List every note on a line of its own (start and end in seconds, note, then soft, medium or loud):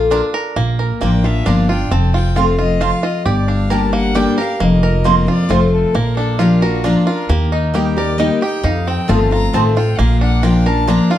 0.00 0.20 A#1 loud
0.00 0.29 A#3 medium
0.00 0.52 F4 medium
0.00 0.11 A4 medium
0.10 0.20 A#3 loud
0.10 0.56 D4 medium
0.10 0.20 F4 loud
0.10 0.25 A#4 loud
0.10 0.20 D5 loud
0.10 0.20 A#5 loud
0.34 0.56 A#4 medium
0.56 0.89 A#1 loud
0.56 1.42 A#2 medium
0.56 1.00 A#3 medium
0.79 1.42 A#4 medium
1.01 1.40 A1 medium
1.01 1.23 F3 medium
1.01 1.10 A#3 medium
1.01 1.64 A#3 medium
1.01 1.23 A#3 medium
1.01 1.24 D4 medium
1.01 1.10 F4 medium
1.01 1.23 F4 loud
1.01 1.10 D5 medium
1.01 1.27 G5 medium
1.01 1.10 A#5 medium
1.24 1.46 D4 medium
1.24 1.45 F4 medium
1.24 1.68 F4 medium
1.24 1.48 E5 loud
1.45 1.85 G1 medium
1.45 1.68 F3 medium
1.45 1.55 A#3 loud
1.45 1.68 A#3 medium
1.45 1.91 D4 medium
1.45 1.68 D4 medium
1.45 1.55 F4 medium
1.45 1.68 F4 loud
1.45 1.55 D5 loud
1.45 1.69 F5 loud
1.45 1.55 A#5 loud
1.69 1.91 D4 medium
1.69 1.90 F4 medium
1.69 1.91 F4 medium
1.69 1.93 G5 medium
1.91 2.90 F1 loud
1.91 2.77 F2 medium
1.91 2.54 C4 medium
1.91 2.14 A5 medium
2.14 2.35 F4 medium
2.14 2.38 G5 loud
2.35 2.58 F3 medium
2.35 2.58 A3 loud
2.35 2.45 C4 medium
2.35 2.59 C4 medium
2.35 2.45 F4 medium
2.35 2.57 F4 medium
2.35 2.58 F4 loud
2.35 2.45 C5 loud
2.35 2.59 F5 medium
2.35 2.45 A5 loud
2.59 2.81 C4 medium
2.59 2.80 F4 medium
2.59 2.83 D#5 loud
2.80 3.24 F2 medium
2.80 2.90 C4 medium
2.80 2.90 F4 loud
2.80 3.02 F4 medium
2.80 2.90 C5 loud
2.80 3.06 F5 loud
2.80 2.90 A5 loud
3.03 3.25 F4 medium
3.03 3.28 D#5 loud
3.26 4.24 G1 loud
3.26 4.11 G2 medium
3.26 3.89 G4 medium
3.26 3.50 D5 medium
3.48 4.11 D4 medium
3.48 3.73 F5 medium
3.70 4.13 G3 medium
3.70 3.79 A#3 medium
3.70 4.14 A#3 medium
3.70 4.14 D4 medium
3.70 3.80 G4 loud
3.70 4.14 G4 loud
3.70 4.34 A#4 medium
3.70 3.80 D5 medium
3.70 3.80 G5 medium
3.70 3.93 A5 loud
3.93 4.56 A#3 medium
3.93 4.18 F#5 loud
4.15 4.37 G3 medium
4.15 4.24 A#3 medium
4.15 4.37 A#3 loud
4.15 4.38 D4 loud
4.15 4.60 G4 medium
4.15 4.25 G4 loud
4.15 4.36 G4 loud
4.15 4.25 D5 loud
4.15 4.25 G5 loud
4.15 4.39 G5 loud
4.38 4.60 D4 soft
4.38 4.59 G4 medium
4.38 4.60 A#4 medium
4.38 4.63 F5 medium
4.60 5.26 F1 loud
4.60 5.46 F2 loud
4.60 5.04 A#3 medium
4.60 5.29 D#5 medium
4.83 5.46 A#4 medium
5.04 5.27 F3 medium
5.04 5.27 A#3 medium
5.04 5.50 A#3 medium
5.04 5.14 C4 medium
5.04 5.27 C4 loud
5.04 5.14 F4 medium
5.04 5.26 F4 loud
5.04 5.14 C5 loud
5.04 5.15 A#5 loud
5.27 5.49 C4 medium
5.27 5.49 F4 medium
5.27 5.52 D5 loud
5.49 5.83 F1 medium
5.49 5.92 F3 medium
5.49 5.93 A3 medium
5.49 5.59 C4 medium
5.49 5.93 C4 loud
5.49 5.59 F4 loud
5.49 5.95 F4 medium
5.49 5.93 F4 medium
5.49 5.59 C5 medium
5.49 5.72 C5 medium
5.49 5.60 A5 loud
5.73 5.97 A4 medium
5.94 6.94 A#1 loud
5.94 6.80 A#2 medium
5.94 7.29 A#3 medium
5.94 6.16 A#4 loud
6.17 6.80 D4 medium
6.17 6.41 A4 loud
6.39 6.61 F3 medium
6.39 6.49 A#3 medium
6.39 6.62 A#3 medium
6.39 6.62 D4 medium
6.39 7.03 F4 medium
6.39 6.49 F4 medium
6.39 6.61 F4 loud
6.39 6.63 G4 medium
6.39 6.49 D5 medium
6.39 6.49 A#5 loud
6.62 6.84 D4 medium
6.62 6.84 F4 medium
6.62 6.86 F#4 loud
6.62 7.25 A#4 medium
6.84 7.06 F3 medium
6.84 6.94 A#3 medium
6.84 7.07 A#3 medium
6.84 7.29 D4 medium
6.84 7.07 D4 medium
6.84 6.94 F4 loud
6.84 7.07 F4 medium
6.84 7.06 F4 loud
6.84 6.94 D5 medium
6.84 6.94 A#5 loud
7.07 7.29 D4 medium
7.07 7.28 F4 medium
7.07 7.29 F4 medium
7.07 7.31 A#4 loud
7.29 8.28 D#2 loud
7.29 8.15 D#3 medium
7.29 7.93 A#3 medium
7.29 7.51 G4 medium
7.52 7.65 D#4 medium
7.52 8.15 D#4 medium
7.74 7.96 G3 medium
7.74 7.83 A#3 loud
7.74 7.96 A#3 medium
7.74 7.97 D#4 medium
7.74 7.84 G4 medium
7.74 8.38 G4 medium
7.74 7.95 G4 medium
7.74 7.84 D#5 medium
7.74 7.84 G5 loud
7.96 8.18 D#4 medium
7.96 8.18 G4 medium
7.96 8.60 A#4 medium
7.96 8.20 D5 loud
8.18 8.41 G3 medium
8.18 8.41 A#3 medium
8.18 8.28 A#3 loud
8.18 8.41 D#4 loud
8.18 8.63 D#4 medium
8.18 8.29 G4 loud
8.18 8.40 G4 medium
8.18 8.41 D#5 loud
8.18 8.29 D#5 medium
8.18 8.29 G5 loud
8.41 8.64 D#4 soft
8.41 8.63 G4 medium
8.41 8.64 G4 medium
8.41 8.66 G5 loud
8.63 9.49 F2 loud
8.63 8.97 F2 loud
8.63 9.27 D#4 medium
8.63 8.89 F5 medium
8.87 9.50 C4 medium
8.87 9.10 G5 loud
9.08 9.48 G1 loud
9.08 9.31 D#3 medium
9.08 9.31 A3 medium
9.08 9.18 C4 medium
9.08 9.31 C4 loud
9.08 9.18 F4 loud
9.08 9.32 F4 medium
9.08 9.30 F4 loud
9.08 9.18 D#5 loud
9.08 9.31 A5 medium
9.08 9.18 A5 loud
9.31 9.54 C4 medium
9.31 9.53 F4 medium
9.31 9.77 F4 medium
9.31 9.55 A#5 loud
9.53 9.92 A1 medium
9.53 9.76 D#3 loud
9.53 9.76 A3 medium
9.53 9.63 C4 medium
9.53 9.98 C4 medium
9.53 9.76 C4 medium
9.53 9.63 F4 loud
9.53 9.75 F4 loud
9.53 9.63 D#5 loud
9.53 9.76 A5 loud
9.53 9.63 A5 loud
9.76 9.99 C4 medium
9.76 9.98 F4 medium
9.76 10.43 F4 medium
9.76 10.00 G5 medium
9.98 10.98 A#1 loud
9.98 10.85 A#2 medium
9.98 10.62 A#3 medium
9.98 10.20 F5 loud
10.21 10.84 D4 medium
10.21 10.45 F#5 loud
10.43 10.65 F3 medium
10.43 10.52 A#3 medium
10.43 10.66 A#3 medium
10.43 10.66 D4 medium
10.43 10.53 F4 loud
10.43 11.07 F4 medium
10.43 10.65 F4 medium
10.43 10.53 D5 medium
10.43 10.68 G5 loud
10.43 10.53 A#5 loud
10.66 10.88 D4 medium
10.66 10.88 F4 medium
10.66 11.18 A#4 medium
10.66 10.90 A5 loud
10.87 11.10 F3 loud
10.87 10.97 A#3 loud
10.87 11.11 A#3 loud
10.87 11.18 D4 medium
10.87 11.11 D4 loud
10.87 10.97 F4 loud
10.87 11.09 F4 loud
10.87 10.98 D5 loud
10.87 10.98 A#5 loud
10.87 11.13 A#5 loud
11.10 11.18 D4 soft
11.10 11.18 F4 medium
11.10 11.18 F5 loud